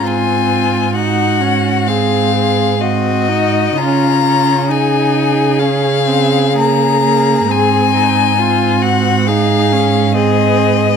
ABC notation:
X:1
M:4/4
L:1/8
Q:1/4=66
K:Abmix
V:1 name="Violin"
a2 g2 f2 e2 | b2 a2 f2 b2 | a3 g f2 e2 |]
V:2 name="Violin"
F2 G2 A A G2 | F2 A6 | A E F G A2 A2 |]
V:3 name="Viola"
C2 E D C2 C E | D D E2 D C B, B, | C2 C2 E D C2 |]
V:4 name="Cello" clef=bass
A,,8 | D,8 | A,,8 |]